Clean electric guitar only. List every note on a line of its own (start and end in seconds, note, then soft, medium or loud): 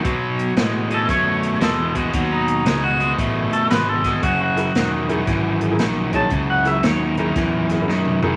0.94 1.10 A4 medium
1.10 1.61 C#5 medium
1.63 1.97 A4 medium
1.97 2.30 F#4 medium
2.32 2.83 D#4 medium
2.84 3.12 F#4 medium
3.53 3.70 A4 medium
3.71 3.88 B4 medium
3.89 4.22 A4 medium
4.23 4.40 F#4 medium
4.42 5.42 F#4 medium
6.16 6.49 A5 medium
6.50 6.67 F#5 medium
6.67 6.85 E5 medium
6.85 7.04 C#5 medium
7.04 8.36 A#4 medium